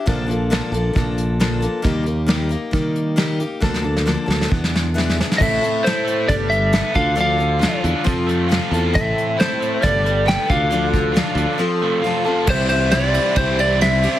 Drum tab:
CC |----------------|----------------|----------------|x---------------|
RD |----------------|----------------|----------------|----------------|
HH |x-x-x-x-x-x-x-x-|x-x-x-x-x-x-x-x-|----------------|--x-x-x-x-x-x-x-|
SD |----o-------o---|----o-------o---|oo-oo-oo-oo-oooo|----o-------o---|
BD |o-------o-------|o-------o-------|o-------o-------|o-------o-----o-|

CC |----------------|----------------|----------------|x---------------|
RD |----------------|----------------|----------------|--x-x-x-x-x-x-x-|
HH |x-x-x-x-x-x-x-x-|x-x-x-x-x-x-x-x-|x-x-x-x---------|----------------|
SD |----o-------o---|----o-------o---|----o-----------|----o-------o---|
BD |--------o-------|o-------o-----o-|--o-------------|o-------o-------|